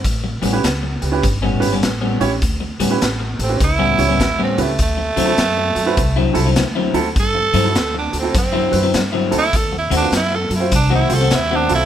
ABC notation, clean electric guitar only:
X:1
M:4/4
L:1/16
Q:"Swing" 1/4=101
K:D
V:1 name="Clean electric guitar"
z2 [A,,G,B,C] z6 [A,,G,B,C] z [A,,G,B,C] z [A,,G,B,C] z2 | z2 [A,,G,B,C] z6 [A,,G,B,C] z [A,,G,B,C] z [A,,G,B,C] z2 | z2 [D,F,=CE] z6 [D,F,CE] z [D,F,CE] z [D,F,CE] z2 | z2 [D,F,=CE] z6 [D,F,CE] z [D,F,CE] z [D,F,CE] z2 |
z2 [^D,A,^B,F] z6 [D,A,B,F] z [D,A,B,F] z [D,A,B,F] z2 |]